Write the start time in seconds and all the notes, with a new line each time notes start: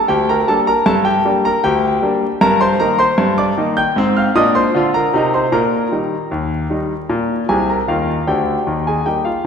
0.08 D2 G4 G5
0.29 A#4 A#5
0.48 G3 A#3 D4 A4 A5
0.67 A#4 A#5
0.86 G2 A4 A5
1.05 G4 G5
1.25 G3 A#3 D4
1.45 A#4 A#5
1.64 D2 G4 G5
2.02 G3 A#3 D4
2.41 G2 A#4 A#5
2.61 C5 C6
2.80 D#3 A#3 D#4 A#4 A#5
2.99 C5 C6
3.18 G2
3.38 D5 D6
3.57 D#3 A#3 D#4
3.77 G5 G6
3.96 G#2 C4
4.17 F5 F6
4.35 A#2 D4 D#5 D#6
4.55 C5 C6
4.75 D3 F4
4.94 A#4 A#5
5.14 C3 D#4
5.34 C5 C6
5.52 A#2 A#4 A#5
5.92 D#3 G3 D#4
6.31 D#2
6.70 D#3 G3 D#4
7.09 A#2
7.49 C2 C3 G#4 G#5
7.70 A#4 A#5
7.88 D#2 D#3 F4 F5
8.27 D2 D3 G4 G5
8.67 D#2 D#3
8.87 G#4 G#5
9.06 G3 A#3 D#4 G4 G5
9.25 F4 F5